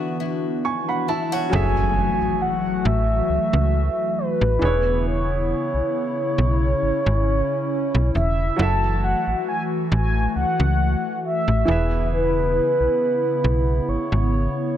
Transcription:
Already playing: D3 E3 B3 D4 E4 F#4 B4 E5
0.20 E4
0.65 G#5 C#6
0.89 F#5 B5
1.08 E4 E5 A5
1.32 F#4 C#5 F#5
1.50 F#1 E3 F#3 A3 C#4 F#4 G#4 G#5, impact
1.54 A4 E5
2.21 A1
2.42 F#5
2.85 A1 E5
3.29 C#2
3.53 C#2
4.18 B4
4.41 A1
4.59 E1 C#3 E3 B3 D4 E4 G#4
4.63 E4 B4 C#5
5.07 C#5
5.74 B1
6.38 B1 C#4
6.83 G#1
7.06 G#1
7.95 B1
8.15 E1 E5
8.56 F#1 E3 F#3 A3 E4 F#4 A5
8.61 A4 E5
9.04 F#5
9.27 A1
9.49 G#5
9.92 A1 G#5
10.36 C#2 F#5
10.60 C#2
11.25 E5
11.48 A1
11.65 E1 C#3 E3 B3 E4 G#4
11.70 B4 E5
12.13 B4
12.80 B1
13.44 B1
13.88 G#1 C#5
14.12 G#1

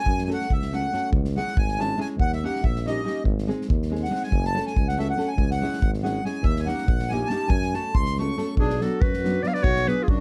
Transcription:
0.00 G#5
0.05 F#2, kick
0.18 snare
0.25 A3 C#4 F#4 G#5
0.30 A4 F#5, snare
0.41 snare
0.50 C#2 E5, kick
0.62 snare
0.72 A3 C#4 F#4 A4 F#5, snare
0.92 A3 C#4 F#4 A4, snare
1.11 C#2, kick
1.24 snare
1.36 G#3 C#4 E4 G#4 F#5, snare
1.48 snare
1.56 G#1 G#5, kick
1.68 snare
1.78 G#3 C#4 E4 G#4 A5, snare
1.97 G#3 C#4 E4 G#4 G#5, snare
2.17 D#2 F#5, kick
2.32 E5, snare
2.43 A#3 C#4 D#4 G4 F#5, snare
2.56 snare
2.62 A#1 E5, kick
2.76 snare
2.86 A#3 C#4 D#4 G4 D#5, snare
3.04 A#3 C#4 D#4 G4, snare
3.24 G#1, kick
3.38 snare
3.47 G#3 C4 D#4 G#4, snare
3.61 snare
3.68 D#2, kick
3.82 snare
3.90 G#3 C4 D#4 G#4
3.95 snare
4.03 F#5, snare
4.10 G#3 C4 D#4 G#4
4.15 snare
4.23 G#5, snare
4.31 F#1, kick
4.45 A5, snare
4.54 A3 C#4 F#4 A4, snare
4.66 G#5, snare
4.75 C#2, kick
4.88 F#5, snare
4.97 A3 C#4 F#4 A4 E5, snare
5.10 F#5
5.17 A3 C#4 F#4 A4, snare
5.28 G#5
5.37 C#2, kick
5.51 F#5, snare
5.61 G#3 C#4 E4 G#4, snare
5.74 snare
5.81 G#1, kick
5.94 snare
6.03 G#3 C#4 E4 G#4 F#5, snare
6.24 G#3 C#4 E4 G#4 G#5, snare
6.42 D#2 E5, kick
6.56 G#5, snare
6.66 A#3 C#4 D#4 G4 F#5, snare
6.78 snare
6.86 A#1, kick
6.99 snare
7.09 A#3 C#4 D#4 G4 G#5, snare
7.27 A#3 C#4 A5, snare
7.31 D#4 G4
7.48 F#2 G#5, kick
7.62 snare
7.74 A3 C#4 F#4 A4 A5, snare
7.94 C#2 C6, kick
8.06 snare
8.17 A3 C#4 F#4 A4 C#6, snare
8.37 A3 C#4 F#4 A4, snare
8.56 B1 D4 G#4, kick
8.70 snare
8.80 F#3 B3 D4 F#4 A4, snare
9.01 F#2 F#4 B4, kick
9.13 snare
9.24 F#3 B3 D4 F#4, snare
9.43 F#3 B3 D4 F#4 B4 D5, snare
9.47 C#5 F5
9.54 B4 D5, snare
9.63 B1 F#4 C#5, kick
9.76 snare
9.85 F#3 B3 D4 F#4 G#4 B4, snare
10.01 F4 G#4
10.08 F#2 D4 F#4, kick

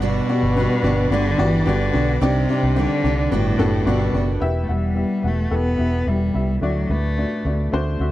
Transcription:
Already playing: G1 G2 D3 B3 D4 F#4 G4 B4 D5 F#5 D6
0.02 B2 G3 B3 D4 F#4
0.28 B3 D4 F#4 G4 D5
0.32 B3
0.43 G1
0.56 G3 B3 D4 F#4 G4 B4
0.60 F#4
0.83 G1 B3 D4 F#4 G4 D5
0.87 B3
1.11 G1 D3 G3 B3 D4 F#4 G4 D5
1.38 G1 E3 B3 D4 F#4 G4 D5
1.42 B3
1.66 G1 D3 G3 B3 D4 F#4 G4 D5
1.93 B1 B3 D4 F#4 G4 D5
2.21 C2 G2 C3 D#3 G3 C4 D4 D#4 G4 C5 D5 D#5
2.49 G3 C4 D4 D#4 G4 D5
2.63 C2
2.75 D3 D#3 G3 C4 D4 D#4 G4 D5
3.03 C2 C4 D4 D#4 G4 D5
3.07 G3
3.31 G1 G2 A2 D3 G3 B3 D4 F#4 G4 B4 D5 F#5 G5 D6
3.58 F#1 B3 D4 F#4 G4 A4
3.62 B3
3.85 G1 B2 G3 B3 D4 F#4 G4 D5
3.90 F#4
4.13 F#1 B3 D4 F#4 G4 D5
4.18 B3
4.40 E1 B2 B3 E4 G4 E5
4.63 A3
4.68 E1 B3 E4 G4 F#5
4.73 G3
4.95 B3 E4 G4 E5
5.23 E1 B3 E4 G4 F#5
5.27 A3
5.50 E1 B3 E4 G4 A4
5.55 B3
5.77 E1 B3 E4 G4 E5
6.06 E1 G3 B3 E4 G4 E5
6.33 C2 B3 E4 G4 E5
6.61 D2 A2 F#3 A3 D4 F#4 D5
6.89 D2 A3 D4 F#4 B4
7.17 A3 D4 F#4 D5
7.45 D2 A3 D4 F#4 D5
7.72 D2 A3 D4 F#4 C5
8.00 D2 A3 D4 F#4 E5

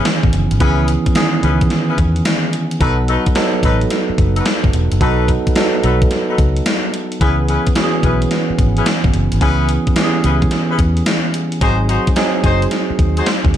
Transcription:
Already playing: D#3 E3 B3 C#4 G#4
0.05 snare, closed hi-hat
0.23 G#1, kick
0.33 F#1, closed hi-hat
0.51 G#1, closed hi-hat
0.60 C#2 E3 B3 C#4 E4 G#4 B4, kick, closed hi-hat
0.88 closed hi-hat
1.06 kick, closed hi-hat
1.15 D#3 B3 C#4 G#4, snare, closed hi-hat
1.22 E3
1.43 C#2 C#4 E4 G#4 B4, closed hi-hat
1.61 kick, closed hi-hat
1.70 snare, closed hi-hat
1.89 C#4 E4 G#4 B4
1.98 E2, kick, closed hi-hat
2.16 closed hi-hat
2.25 snare, closed hi-hat
2.53 closed hi-hat
2.71 closed hi-hat
2.80 B1 F#3 B3 D#4 F#4 A4 B4, kick, closed hi-hat
3.08 D#4 F#4 A4 B4, closed hi-hat
3.26 kick, closed hi-hat
3.35 F#3 B3 D#4 A4, snare, closed hi-hat
3.63 A1 D#4 F#4 A4 B4, kick, closed hi-hat
3.81 closed hi-hat
3.90 snare, closed hi-hat
4.10 muted fingered electric bass stroke
4.18 F#1, kick, closed hi-hat
4.36 D#4 F#4 A4 B4, closed hi-hat
4.46 snare, closed hi-hat
4.64 F#1, kick
4.73 E1, closed hi-hat
4.92 F#1, closed hi-hat
5.01 B1 F#3 B3 D#4 F#4 A4 B4, kick, closed hi-hat
5.28 kick, closed hi-hat
5.47 kick, closed hi-hat
5.56 F#3 B3 D#4 A4, snare, closed hi-hat
5.83 B1 D#4 F#4 A4 B4, closed hi-hat
6.02 kick, closed hi-hat
6.11 snare, closed hi-hat
6.29 D#4 F#4 A4 B4
6.38 C#2, kick, closed hi-hat
6.57 closed hi-hat
6.66 snare, closed hi-hat
6.94 closed hi-hat
7.12 closed hi-hat
7.21 C#2 E3 B3 C#4 E4 G#4 B4, kick, closed hi-hat
7.48 C#4 E4 G#4 B4, closed hi-hat
7.67 kick, closed hi-hat
7.75 E3 B3 C#4 F#4, snare, closed hi-hat
7.83 G#4
8.03 B1 C#4 E4 G#4 B4, kick, closed hi-hat
8.22 closed hi-hat
8.31 snare, closed hi-hat
8.50 muted fingered electric bass stroke
8.59 G#1, kick, closed hi-hat
8.77 C#4 E4 G#4 B4, closed hi-hat
8.86 snare, closed hi-hat
9.04 G#1, kick
9.14 F#1, closed hi-hat
9.32 G#1, closed hi-hat
9.41 C#2 E3 B3 C#4 E4 G#4 B4, kick, closed hi-hat
9.69 closed hi-hat
9.87 kick, closed hi-hat
9.96 E3 B3 C#4 G4, snare, closed hi-hat
10.04 G#4
10.24 C#2 C#4 E4 G#4 B4, closed hi-hat
10.42 kick, closed hi-hat
10.51 snare, closed hi-hat
10.69 C#4 E4 G#4 B4
10.79 E2, kick, closed hi-hat
10.97 closed hi-hat
11.06 snare, closed hi-hat
11.34 closed hi-hat
11.52 closed hi-hat
11.61 G#1 F#3 C4 D#4 F#4 G#4 C5, kick, closed hi-hat
11.89 D#4 F#4 G#4 C5, closed hi-hat
12.07 kick, closed hi-hat
12.16 F#3 C4 D#4 G#4, snare, closed hi-hat
12.44 F#1 D#4 F#4 G#4 C5, kick, closed hi-hat
12.62 closed hi-hat
12.71 snare, closed hi-hat
12.90 muted fingered electric bass stroke
12.99 D#2, kick, closed hi-hat
13.17 D#4 F#4 G#4 C5, closed hi-hat
13.26 snare, closed hi-hat
13.45 D#2, kick
13.54 closed hi-hat

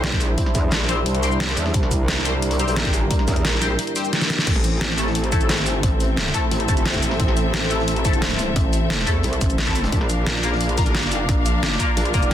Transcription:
Already playing: B1 G3 C4 D4 E4 G4 C5
0.04 snare, closed hi-hat
0.12 kick, closed hi-hat
0.21 A#1, closed hi-hat, open hi-hat, shaker
0.38 kick, closed hi-hat
0.46 snare
0.55 E2, kick, closed hi-hat, shaker
0.71 A#1, snare, closed hi-hat
0.81 snare
0.89 C4 G4 C5, closed hi-hat, shaker
1.06 C2, closed hi-hat
1.15 closed hi-hat
1.23 C4 G4 C5, closed hi-hat, shaker
1.32 shaker
1.40 snare, closed hi-hat
1.49 closed hi-hat
1.57 E2, closed hi-hat, open hi-hat, shaker
1.66 snare
1.74 C2 A#4, kick, closed hi-hat
1.83 snare
1.91 kick, closed hi-hat, shaker
2.08 snare, closed hi-hat
2.25 C4 G4 C5, closed hi-hat, shaker
2.42 closed hi-hat
2.51 closed hi-hat
2.59 C4 G4 C5, closed hi-hat, shaker
2.68 closed hi-hat, shaker
2.76 snare, closed hi-hat
2.85 kick, closed hi-hat
2.93 G#1, closed hi-hat, open hi-hat, shaker
3.11 kick, closed hi-hat
3.19 snare
3.27 E2, kick, snare, closed hi-hat, shaker
3.36 closed hi-hat
3.45 A#1, snare, closed hi-hat
3.53 snare
3.62 C4 G4 C5, closed hi-hat, shaker
3.79 closed hi-hat
3.87 closed hi-hat
3.96 C4 G4 C5, closed hi-hat, shaker
4.04 shaker
4.13 snare, closed hi-hat
4.21 snare, closed hi-hat, shaker
4.30 snare, open hi-hat, shaker
4.38 snare, closed hi-hat
4.47 A1 A3 C4 E4 C5, kick, closed hi-hat, crash
4.56 snare
4.64 closed hi-hat, shaker
4.80 A4, snare, closed hi-hat
4.98 A3 E4 A4, closed hi-hat, shaker
5.07 snare
5.15 closed hi-hat
5.24 closed hi-hat
5.28 A3 E4 A4 E5, kick, closed hi-hat, shaker
5.41 G#1, closed hi-hat, shaker
5.49 snare, closed hi-hat
5.58 closed hi-hat
5.66 G1, closed hi-hat, open hi-hat, shaker
5.83 A1, kick, closed hi-hat
6.00 closed hi-hat, shaker
6.16 snare, closed hi-hat
6.26 snare
6.34 A3 E4 A4, kick, closed hi-hat, shaker
6.51 A1, closed hi-hat
6.60 closed hi-hat
6.68 G1 A3 E4 A4, kick, closed hi-hat, shaker
6.77 closed hi-hat, shaker
6.85 snare, closed hi-hat
6.94 kick, closed hi-hat, shaker
7.03 A1, closed hi-hat, open hi-hat, shaker
7.11 snare
7.20 A1, kick, closed hi-hat
7.28 snare
7.37 closed hi-hat, shaker
7.53 snare, closed hi-hat
7.71 A3 E4 A4, closed hi-hat, shaker
7.79 snare
7.88 closed hi-hat
7.96 closed hi-hat
8.05 A3 E4 A4, kick, closed hi-hat, shaker
8.13 closed hi-hat, shaker
8.22 snare, closed hi-hat
8.30 closed hi-hat
8.39 closed hi-hat, open hi-hat, shaker
8.56 A1, kick, closed hi-hat
8.73 closed hi-hat, shaker
8.90 snare, closed hi-hat
8.99 snare
9.07 E2 A3 E4 A4, kick, closed hi-hat, shaker
9.23 C2, closed hi-hat
9.33 closed hi-hat
9.41 A1, kick, closed hi-hat, shaker
9.50 closed hi-hat, shaker
9.58 snare, closed hi-hat
9.67 A3 E4 A4, kick, closed hi-hat, shaker
9.75 closed hi-hat, open hi-hat, shaker
9.84 snare, closed hi-hat
9.92 A#1 A#3 D4 F4 D5, kick, closed hi-hat
10.01 F5, snare
10.10 A#4, closed hi-hat, shaker
10.26 snare, closed hi-hat
10.44 A#3 F4 A#4, closed hi-hat, shaker
10.52 snare
10.61 closed hi-hat
10.69 closed hi-hat
10.78 A#3 F4 A#4, kick, closed hi-hat, shaker
10.86 closed hi-hat, shaker
10.95 snare, closed hi-hat
11.03 closed hi-hat
11.11 F#1, closed hi-hat, open hi-hat, shaker
11.29 A#1, kick, closed hi-hat
11.46 closed hi-hat, shaker
11.63 snare, closed hi-hat
11.72 snare
11.80 A#3 F4 A#4, kick, closed hi-hat, shaker
11.97 A#1, closed hi-hat
12.05 closed hi-hat
12.14 F1 A#3 F4 A#4, kick, closed hi-hat, shaker
12.23 closed hi-hat, shaker

